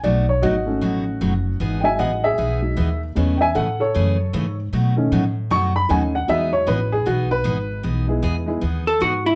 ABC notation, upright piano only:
X:1
M:4/4
L:1/8
Q:"Swing" 1/4=154
K:E
V:1 name="Upright piano"
=d c [^DF]6 | z [e=g^g] [df] [Ge]4 z | z [e=g^g] [Af] [Ac]4 z | z4 c' b g f |
e c B G F B3 | z [G,B,DEG]2 [G,B,DEG] z4 |]
V:2 name="Upright piano"
z3 [A,CD]4- [A,CD] | z [F,G,D]3 z [F,G,D] z2 | [G,B,C] z6 z | z [D,A,C] z4 [D,A,C] z |
[F,G,D]3 z4 z | z8 |]